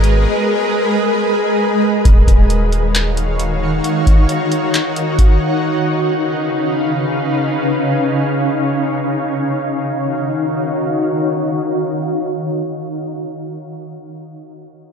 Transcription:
0, 0, Header, 1, 4, 480
1, 0, Start_track
1, 0, Key_signature, -6, "minor"
1, 0, Tempo, 500000
1, 14325, End_track
2, 0, Start_track
2, 0, Title_t, "Ambient pad"
2, 0, Program_c, 0, 92
2, 0, Note_on_c, 0, 56, 85
2, 0, Note_on_c, 0, 68, 77
2, 0, Note_on_c, 0, 70, 76
2, 0, Note_on_c, 0, 71, 78
2, 0, Note_on_c, 0, 75, 80
2, 1932, Note_off_c, 0, 75, 0
2, 1936, Note_off_c, 0, 68, 0
2, 1936, Note_off_c, 0, 70, 0
2, 1937, Note_off_c, 0, 56, 0
2, 1937, Note_off_c, 0, 71, 0
2, 1971, Note_on_c, 0, 66, 78
2, 1972, Note_on_c, 0, 51, 82
2, 1972, Note_on_c, 0, 63, 74
2, 1972, Note_on_c, 0, 73, 78
2, 1972, Note_on_c, 0, 77, 90
2, 3673, Note_off_c, 0, 77, 0
2, 3690, Note_on_c, 0, 78, 90
2, 5375, Note_off_c, 0, 66, 0
2, 5376, Note_off_c, 0, 51, 0
2, 5376, Note_off_c, 0, 73, 0
2, 5392, Note_off_c, 0, 78, 0
2, 5410, Note_on_c, 0, 71, 75
2, 5410, Note_on_c, 0, 77, 93
2, 5411, Note_on_c, 0, 49, 84
2, 5411, Note_on_c, 0, 61, 73
2, 7112, Note_off_c, 0, 71, 0
2, 7128, Note_on_c, 0, 73, 74
2, 8810, Note_off_c, 0, 63, 0
2, 8814, Note_off_c, 0, 77, 0
2, 8815, Note_off_c, 0, 49, 0
2, 8815, Note_off_c, 0, 61, 0
2, 8831, Note_off_c, 0, 73, 0
2, 8846, Note_on_c, 0, 66, 74
2, 8846, Note_on_c, 0, 77, 88
2, 8847, Note_on_c, 0, 51, 85
2, 8847, Note_on_c, 0, 63, 74
2, 8847, Note_on_c, 0, 73, 71
2, 12533, Note_off_c, 0, 66, 0
2, 12533, Note_off_c, 0, 73, 0
2, 12533, Note_off_c, 0, 77, 0
2, 12534, Note_off_c, 0, 51, 0
2, 12534, Note_off_c, 0, 63, 0
2, 14325, End_track
3, 0, Start_track
3, 0, Title_t, "808-style bass"
3, 0, Program_c, 1, 38
3, 0, Note_on_c, 1, 32, 112
3, 251, Note_off_c, 1, 32, 0
3, 1971, Note_on_c, 1, 27, 116
3, 2177, Note_off_c, 1, 27, 0
3, 2185, Note_on_c, 1, 27, 102
3, 3652, Note_off_c, 1, 27, 0
3, 14325, End_track
4, 0, Start_track
4, 0, Title_t, "Drums"
4, 35, Note_on_c, 9, 42, 73
4, 131, Note_off_c, 9, 42, 0
4, 1971, Note_on_c, 9, 36, 106
4, 1971, Note_on_c, 9, 42, 78
4, 2067, Note_off_c, 9, 36, 0
4, 2067, Note_off_c, 9, 42, 0
4, 2185, Note_on_c, 9, 36, 88
4, 2189, Note_on_c, 9, 42, 70
4, 2281, Note_off_c, 9, 36, 0
4, 2285, Note_off_c, 9, 42, 0
4, 2400, Note_on_c, 9, 42, 79
4, 2496, Note_off_c, 9, 42, 0
4, 2616, Note_on_c, 9, 42, 64
4, 2712, Note_off_c, 9, 42, 0
4, 2830, Note_on_c, 9, 42, 76
4, 2835, Note_on_c, 9, 39, 109
4, 2926, Note_off_c, 9, 42, 0
4, 2931, Note_off_c, 9, 39, 0
4, 3046, Note_on_c, 9, 42, 76
4, 3142, Note_off_c, 9, 42, 0
4, 3259, Note_on_c, 9, 42, 75
4, 3355, Note_off_c, 9, 42, 0
4, 3689, Note_on_c, 9, 42, 81
4, 3785, Note_off_c, 9, 42, 0
4, 3905, Note_on_c, 9, 36, 89
4, 3908, Note_on_c, 9, 42, 68
4, 4001, Note_off_c, 9, 36, 0
4, 4004, Note_off_c, 9, 42, 0
4, 4119, Note_on_c, 9, 42, 80
4, 4215, Note_off_c, 9, 42, 0
4, 4335, Note_on_c, 9, 42, 63
4, 4431, Note_off_c, 9, 42, 0
4, 4551, Note_on_c, 9, 42, 76
4, 4556, Note_on_c, 9, 39, 105
4, 4647, Note_off_c, 9, 42, 0
4, 4652, Note_off_c, 9, 39, 0
4, 4766, Note_on_c, 9, 42, 75
4, 4862, Note_off_c, 9, 42, 0
4, 4979, Note_on_c, 9, 36, 90
4, 4979, Note_on_c, 9, 42, 80
4, 5075, Note_off_c, 9, 36, 0
4, 5075, Note_off_c, 9, 42, 0
4, 14325, End_track
0, 0, End_of_file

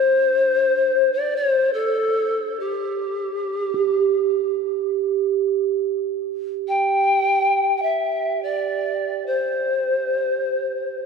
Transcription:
0, 0, Header, 1, 3, 480
1, 0, Start_track
1, 0, Tempo, 500000
1, 10614, End_track
2, 0, Start_track
2, 0, Title_t, "Pan flute"
2, 0, Program_c, 0, 75
2, 0, Note_on_c, 0, 72, 79
2, 1079, Note_on_c, 0, 74, 75
2, 1093, Note_off_c, 0, 72, 0
2, 1303, Note_on_c, 0, 72, 74
2, 1317, Note_off_c, 0, 74, 0
2, 1658, Note_on_c, 0, 69, 81
2, 1673, Note_off_c, 0, 72, 0
2, 2488, Note_on_c, 0, 67, 67
2, 2503, Note_off_c, 0, 69, 0
2, 4345, Note_off_c, 0, 67, 0
2, 6408, Note_on_c, 0, 79, 89
2, 7451, Note_off_c, 0, 79, 0
2, 7451, Note_on_c, 0, 79, 47
2, 7508, Note_on_c, 0, 76, 63
2, 7522, Note_off_c, 0, 79, 0
2, 8084, Note_on_c, 0, 74, 76
2, 8098, Note_off_c, 0, 76, 0
2, 8890, Note_on_c, 0, 72, 69
2, 8905, Note_off_c, 0, 74, 0
2, 10614, Note_off_c, 0, 72, 0
2, 10614, End_track
3, 0, Start_track
3, 0, Title_t, "Singing bowl"
3, 0, Program_c, 1, 14
3, 0, Note_on_c, 1, 62, 47
3, 0, Note_on_c, 1, 67, 34
3, 580, Note_off_c, 1, 62, 0
3, 1242, Note_off_c, 1, 67, 0
3, 3593, Note_on_c, 1, 67, 59
3, 10614, Note_off_c, 1, 67, 0
3, 10614, End_track
0, 0, End_of_file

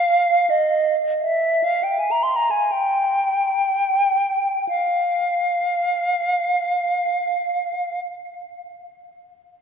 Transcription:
0, 0, Header, 1, 2, 480
1, 0, Start_track
1, 0, Key_signature, -4, "minor"
1, 0, Tempo, 1425178
1, 404, Tempo, 1511335
1, 884, Tempo, 1986755
1, 1364, Time_signature, 4, 2, 24, 8
1, 1364, Tempo, 1643836
1, 2801, End_track
2, 0, Start_track
2, 0, Title_t, "Flute"
2, 0, Program_c, 0, 73
2, 0, Note_on_c, 0, 77, 62
2, 168, Note_on_c, 0, 75, 54
2, 173, Note_off_c, 0, 77, 0
2, 322, Note_off_c, 0, 75, 0
2, 409, Note_on_c, 0, 76, 56
2, 543, Note_on_c, 0, 77, 49
2, 547, Note_off_c, 0, 76, 0
2, 606, Note_on_c, 0, 79, 44
2, 611, Note_off_c, 0, 77, 0
2, 655, Note_on_c, 0, 80, 38
2, 660, Note_off_c, 0, 79, 0
2, 694, Note_on_c, 0, 82, 39
2, 699, Note_off_c, 0, 80, 0
2, 732, Note_on_c, 0, 84, 35
2, 736, Note_off_c, 0, 82, 0
2, 772, Note_on_c, 0, 82, 40
2, 777, Note_off_c, 0, 84, 0
2, 820, Note_on_c, 0, 80, 41
2, 824, Note_off_c, 0, 82, 0
2, 886, Note_on_c, 0, 79, 54
2, 889, Note_off_c, 0, 80, 0
2, 1360, Note_off_c, 0, 79, 0
2, 1361, Note_on_c, 0, 77, 42
2, 2331, Note_off_c, 0, 77, 0
2, 2801, End_track
0, 0, End_of_file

